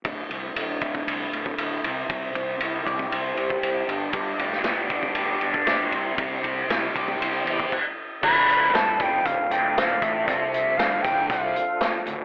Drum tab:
CC |----------------|----------------|----------------|------------x---|
RD |x-x-x-x-x-x-x-x-|x-x-x-x-x-x-x-x-|x-x-x-x-x-x-x-x-|x-x-x-x-x-x-----|
HH |----------------|----------------|----------------|----------------|
SD |----------------|----------------|---oo-------o---|----o-----------|
BD |o-----oo---o----|o-o---oo---o----|o-----oo---o----|o-o---oo---oo---|

CC |x---------------|----------------|
RD |----------------|----------------|
HH |--x-x-x-x-x-x-x-|x-x-x-x-x-x-x-x-|
SD |----o-------o---|----o-------o---|
BD |o-----o-o-----o-|o-----o-o-------|